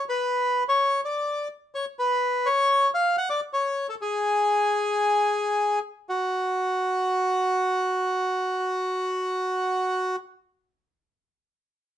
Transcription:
0.09 B4
0.69 C#5
1.05 D5
1.75 C#5
1.99 B4
2.46 C#5
2.94 F5
3.18 F#5
3.30 D5
3.53 C#5
3.89 A4
4.02 G#4
6.09 F#4

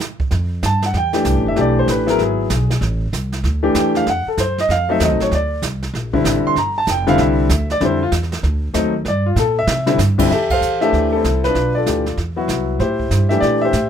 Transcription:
0.00 snare
0.20 kick
0.31 F2, brush sweep, kick, snare
0.63 G2 A5, kick, snare, hi-hat pedal
0.82 F#5, snare
0.93 E2 G5, brush sweep, kick, snare
1.13 E3 A3 D4 G4, snare
1.25 C2, kick, snare, hi-hat pedal
1.36 A1
1.46 F1 E5
1.56 B1 E3 A3 D4 G4, brush sweep, kick, snare
1.60 D5
1.79 C5
1.87 A1 B4, kick, snare, hi-hat pedal
2.06 F#3 B3 E4 G#4 A#4, snare
2.18 G#1 G#4, brush sweep, kick, snare
2.50 B1, kick, snare, hi-hat pedal
2.71 snare
2.81 A1, brush sweep, kick, snare
3.13 C2, kick, snare, hi-hat pedal
3.32 snare
3.43 D2, brush sweep, snare
3.63 E3 A3 D4 G4
3.75 E2 G5, kick, snare, hi-hat pedal
3.95 F5, snare
4.06 F2 F#5, brush sweep, kick, snare
4.26 A4, muted upright bass stroke
4.37 F#2 C5, kick, snare, hi-hat pedal
4.58 D#5, snare
4.69 F2 F5, brush sweep, kick, snare
4.89 F#3 A3 C4 D#4 E5
5.00 D#2, kick, snare, hi-hat pedal
5.04 D#5
5.10 C2
5.20 A1 C#5, snare
5.31 D2 D5, brush sweep, kick, snare
5.62 C2, kick, snare, hi-hat pedal
5.83 snare
5.94 A#1, brush sweep, kick, snare
6.13 D3 G3 C4 E4, kick
6.25 A1, kick, snare, hi-hat pedal
6.44 C6, muted upright bass stroke
6.56 G1 A#5, brush sweep, kick, snare
6.78 A5
6.87 F1 G5, kick, snare, hi-hat pedal
7.07 D3 G3 C4 E4 F5, snare
7.18 C2 E5, brush sweep, kick, snare
7.49 D2, snare, hi-hat pedal
7.70 D5, snare
7.80 F2 D3 G3 C4 E4, brush sweep, kick, snare
7.85 C5
8.03 F4
8.12 E2, kick, snare, hi-hat pedal
8.23 snare
8.32 snare
8.43 D2, brush sweep, snare
8.74 D#2 F#3 A3 C4 D#4, kick, snare, hi-hat pedal
9.05 G2 D5, brush sweep, kick, snare
9.26 F4
9.36 A#2 A4, snare, hi-hat pedal
9.59 E5
9.67 C3, snare
9.86 D3 G3 C4 E4, snare
9.98 G2, snare, hi-hat pedal
10.18 F2 D3 G3 C4 E4, kick, crash
10.30 F2 G4 A4 E5, brush sweep, snare
10.50 A4 C5 F5, kick, crash
10.61 E2, hi-hat pedal
10.81 E3 A3 D4 G4 A4 E5, snare
10.93 D2, brush sweep, snare
11.13 C4 E4 A4
11.24 C2, kick, snare, hi-hat pedal
11.44 D4 F4 B4, snare
11.55 B1, brush sweep, kick, snare
11.75 F4 A4 D5
11.86 D2 E3 A3 D4 G4, kick, snare, hi-hat pedal
12.06 snare
12.17 E2, brush sweep, kick, snare
12.36 F#3 B3 E4 F#4
12.48 C2, kick, snare, hi-hat pedal
12.79 A2 E4 G4 C5, brush sweep, kick, snare
13.00 kick
13.11 G2, snare, hi-hat pedal
13.29 E3 A3 D4 G4 E5, snare
13.40 A#2 D5, brush sweep, kick, snare
13.45 G4
13.62 G4 C5 E5
13.73 A2, kick, snare, hi-hat pedal

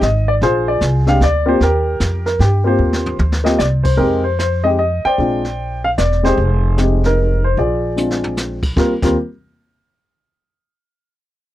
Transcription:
0.01 G#1 D#5, kick, snare
0.28 D5
0.41 A#1 F4 G#4 C5, brush sweep, kick, snare
0.68 D5
0.81 C2, kick, snare, hi-hat pedal
1.06 G#3 C4 D4 G4 F5, snare
1.20 D2 D5, kick, snare
1.46 A#3 C4 F4 G4 C5
1.60 D#2 G4 A#4, brush sweep, kick, snare
2.00 F2, kick, snare, hi-hat pedal
2.26 A#4, snare
2.39 G2 G4, kick, snare
2.64 A#3 C4 F4 G4 C5
2.79 D#2
2.93 snare
3.06 floor tom
3.19 D2, mid tom
3.32 snare
3.44 A#3 C4 F4 G4 D#5, snare
3.59 C2 D5, snare, hi-hat pedal
3.83 C5, kick, crash
3.97 F2 G#3 C4 D#4 G4 A#4, brush sweep, kick
4.24 C5
4.39 C5, snare, hi-hat pedal
4.64 G#3 C4 D#4 G4 D#5
4.79 D#5
5.05 C5 D5 G5, muted upright bass stroke
5.18 A#1 G#3 C4 D4 F4, brush sweep, kick
5.44 snare
5.84 F5
5.98 E1 D5, snare, hi-hat pedal
6.11 snare
6.23 G#3 C4 D#4 G4 G#4 C5, snare
6.37 F1, brush sweep, kick
6.78 G#3 C4 D#4 G4, snare, hi-hat pedal
7.04 D#4 A#4, snare
7.44 C5
7.57 A#1 F4 G#4 D5, brush sweep, kick
7.96 G#3 C4 D4 F4, hi-hat pedal
8.10 snare
8.24 floor tom
8.37 snare, hi-hat pedal
8.63 kick, crash
8.76 D#2 G3 A#3 C4 F4 A#4, kick, snare
9.02 D#2 G3 A#3 C4 F4 A#4, kick, snare, crash

